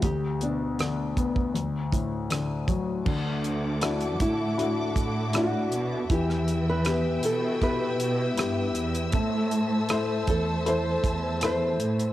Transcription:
0.02 grand piano D2, nylon-string guitar G4, kick, closed hi-hat
0.41 grand piano B2, nylon-string guitar D4, closed hi-hat
0.79 grand piano D3, cross-stick, closed hi-hat
1.17 grand piano B3, kick, closed hi-hat
1.36 kick
1.54 grand piano D2, closed hi-hat
1.92 grand piano A2, kick, closed hi-hat
2.30 grand piano D3, cross-stick, closed hi-hat
2.68 grand piano F#3, kick, closed hi-hat
3.05 cello section D2, grand piano D3, string section A4 E5 F#5 D6, kick, crash
3.44 closed hi-hat
3.81 grand piano D4 E4 F#4, cross-stick, closed hi-hat
4.00 closed hi-hat
4.20 cello section A2, nylon-string guitar E4, kick, closed hi-hat
4.57 grand piano D4 E4 F#4, closed hi-hat
4.96 cello section A2, kick, closed hi-hat
5.33 grand piano D4 E4 F#4, cross-stick, closed hi-hat
5.38 nylon-string guitar F#4
5.72 cello section B2, closed hi-hat
6.09 cello section E2, grand piano E3, nylon-string guitar G4, string section B4 G5 E6, kick, closed hi-hat
6.30 cross-stick
6.48 closed hi-hat
6.70 nylon-string guitar B4
6.85 grand piano B3 E4 G4, cross-stick, closed hi-hat
7.23 cello section B2, nylon-string guitar A4, closed hi-hat
7.62 grand piano B3 E4 G4, nylon-string guitar B4, kick, closed hi-hat
7.99 cello section B2, closed hi-hat
8.37 cello section G2, grand piano B3 E4 G4, cross-stick, closed hi-hat
8.75 cello section E2, closed hi-hat
8.95 closed hi-hat
9.12 cello section A2, grand piano A3, string section C5 A5, kick, closed hi-hat
9.51 closed hi-hat
9.89 grand piano E4 A4 C5, cross-stick, closed hi-hat
10.27 cello section E2, nylon-string guitar A4, kick, closed hi-hat
10.66 grand piano E4 A4 C5, nylon-string guitar C5, closed hi-hat
11.04 cello section E2, kick, closed hi-hat
11.41 grand piano E4 A4 C5, nylon-string guitar C5, cross-stick, closed hi-hat
11.80 cello section A2, closed hi-hat
11.99 closed hi-hat

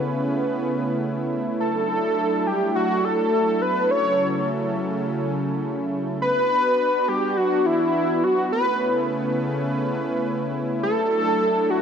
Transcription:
Already playing: analog synth pad C#3 A3 B3 C#4 E4 B4
1.60 analog synth pad F#3 D4 A4, analog synth lead A4
2.47 analog synth lead G4
2.76 analog synth lead F#4
3.04 analog synth lead A4
3.62 analog synth lead B4
3.91 analog synth pad C#3 C#4, analog synth lead C#5
6.21 analog synth pad B3 D4 F#4, analog synth lead B4
7.08 analog synth lead G4
7.37 analog synth lead F#4
7.66 analog synth lead E4
8.24 analog synth lead F#4
8.52 analog synth pad C#3 A3 C#4 E4 B4, analog synth lead B4
10.83 analog synth pad F#3 A3 D4 A4, analog synth lead A4
11.70 analog synth lead F#4

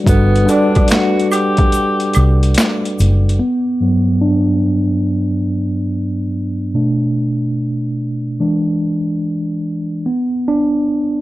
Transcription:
0.04 fingered electric bass G1, tine electric piano G3 D4 F#4, kick, closed hi-hat, shaker
0.08 tenor saxophone B3, tine electric piano A4 B4
0.36 closed hi-hat
0.44 tine electric piano G3 D4 F#5
0.48 tenor saxophone D4, tine electric piano A4 D5, closed hi-hat, shaker
0.75 kick, closed hi-hat, high woodblock
0.88 tenor saxophone F#4, finger snap, snare, closed hi-hat, shaker
1.19 closed hi-hat
1.29 tenor saxophone F#4 G4, high woodblock, shaker
1.33 closed hi-hat
1.57 kick, closed hi-hat
1.72 closed hi-hat, shaker
2.00 closed hi-hat
2.13 fingered electric bass C2, closed hi-hat, high woodblock, shaker
2.43 closed hi-hat
2.54 finger snap, snare, closed hi-hat, shaker
2.85 closed hi-hat
2.99 fingered electric bass F#1, closed hi-hat, shaker
3.29 closed hi-hat
3.39 tine electric piano B3
3.80 tine electric piano G2 F#3 B3
4.21 tine electric piano D4
6.74 tine electric piano B2 A3 D4
8.40 tine electric piano E3 G#3 D4
10.06 tine electric piano B3
10.48 tine electric piano D4

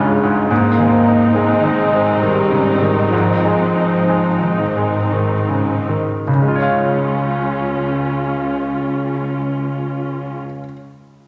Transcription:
Already playing: grand piano C#2 G2 G#2 G#3 F4, cello section C#2, harp C#3 G#3 C#4 F4, french horn section G#3, viola section C#4 F4
0.23 grand piano G#2, harp C#4
0.50 cello section G#2, harp G#2, grand piano G#2, french horn section A#3, viola section C4 D#4
0.78 harp D#3, grand piano G#3
1.07 grand piano D#4, harp D#4
1.35 french horn section G#3, grand piano G#3, harp G#3
1.63 harp D#3, grand piano D#4
1.92 harp G#3, grand piano G#3
2.20 grand piano D#3, french horn section G3, harp D#4
2.51 grand piano C#3, harp G#3
2.81 harp D#3, grand piano D#3
3.11 grand piano G#2, harp G#2, french horn section F3
3.43 harp G#3, grand piano G#3
3.75 harp D#4, grand piano D#4
4.08 harp G#3, grand piano G#3
4.42 harp D#3, grand piano D#4
4.58 french horn section D#3
4.76 harp G#3, grand piano G#3
5.11 grand piano D#3, harp D#4
5.49 grand piano C#3, harp G#3
5.88 harp D#3, grand piano D#3
6.27 grand piano C#2, cello section C#2, french horn section C#3, harp C#3, viola section C#4 F4
6.34 grand piano C#3, harp G#3
6.41 grand piano G#3, harp C#4
6.48 grand piano F4, harp F4
6.56 harp C#5, grand piano C#5
6.62 harp F5, grand piano F5

